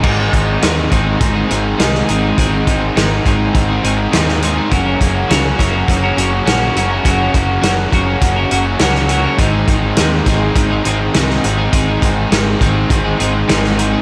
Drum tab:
CC |x---------------|----------------|----------------|----------------|
HH |--x-x-x-x-x-x-x-|x-x-x-x-x-x-x-x-|x-x-x-x-x-x-x-x-|x-x-x-x-x-x-x-x-|
SD |----o-------oo--|----o-------oo--|----o-o-----o---|----o-------oo--|
BD |o-o---o-o-------|o-o---o-o-------|o-o---o-o-------|o-o---o-o-------|

CC |----------------|----------------|
HH |x-x-x-x-x-x-x-x-|x-x-x-x-x-x-x-x-|
SD |----o-o-----oo--|----o-------oo--|
BD |o-o---o-o-------|o-o---o-o-------|